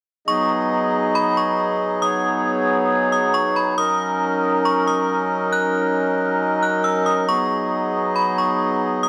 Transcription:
0.28 9.09 F#3 medium
0.28 3.74 B3 medium
0.28 9.09 D#4 medium
0.28 3.74 G#4 medium
0.28 2.01 D#5 medium
0.28 1.11 C#6 loud
1.15 1.36 B5 medium
1.37 1.99 C#6 medium
2.02 3.76 C#5 medium
2.02 3.08 D#6 loud
3.12 3.33 D#6 medium
3.34 3.55 C#6 medium
3.56 3.77 B5 medium
3.78 7.25 C#4 medium
3.78 7.25 A#4 medium
3.78 9.09 D#5 medium
3.78 4.61 D#6 loud
4.65 4.86 C#6 medium
4.87 5.49 D#6 medium
5.53 6.58 F#6 loud
6.63 6.83 F#6 medium
6.84 7.05 E6 medium
7.06 7.27 D#6 medium
7.28 9.09 B3 medium
7.28 9.09 G#4 medium
7.28 8.12 C#6 loud
8.16 8.37 B5 medium
8.38 9.00 C#6 medium
9.03 9.09 D#6 loud

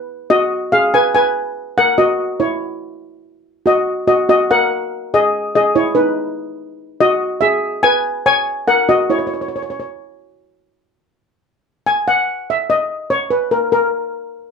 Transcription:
0.30 0.69 F#4 medium
0.30 0.73 D#5 loud
0.72 0.92 G#4 medium
0.72 0.94 F5 medium
0.94 1.13 B4 medium
0.94 1.13 G#5 loud
1.15 1.54 B4 medium
1.15 1.53 G#5 loud
1.78 1.97 A#4 medium
1.78 1.97 F#5 loud
1.98 2.37 F#4 medium
1.98 2.41 D#5 medium
2.40 2.98 E4 medium
2.40 2.98 C#5 medium
3.66 4.04 F#4 medium
3.66 4.06 D#5 medium
4.07 4.17 F#4 medium
4.07 4.17 D#5 medium
4.29 4.48 F#4 medium
4.29 4.50 D#5 medium
4.51 4.89 A#4 medium
4.51 4.89 F#5 loud
5.14 5.52 G#4 medium
5.14 5.54 D#5 medium
5.55 5.74 G#4 medium
5.55 5.76 D#5 medium
5.75 5.85 E4 medium
5.75 5.85 C#5 medium
5.95 6.54 D#4 medium
5.95 6.54 B4 medium
7.01 7.40 F#4 medium
7.01 7.44 D#5 loud
7.41 7.81 G#4 medium
7.41 7.85 E5 medium
7.83 8.23 B4 medium
7.83 8.25 G#5 loud
8.26 8.65 C#5 medium
8.26 8.69 G#5 loud
8.68 8.87 A#4 medium
8.68 8.87 F#5 medium
8.89 9.08 F#4 medium
8.89 9.10 D#5 medium
9.10 9.17 E4 medium
9.10 9.17 C#5 medium
9.19 9.25 C#5 medium
9.27 9.33 C#5 medium
9.34 9.40 C#5 soft
9.41 9.47 C#5 soft
9.48 9.55 C#5 soft
9.56 9.61 C#5 medium
9.62 9.69 C#5 soft
9.70 9.77 C#5 medium
9.80 9.86 C#5 soft
11.87 11.95 G#5 medium
12.08 12.49 F#5 medium
12.50 12.58 E5 medium
12.70 13.11 D#5 medium
13.10 13.31 C#5 medium
13.30 13.52 B4 medium
13.51 13.61 A#4 medium
13.72 14.51 A#4 medium

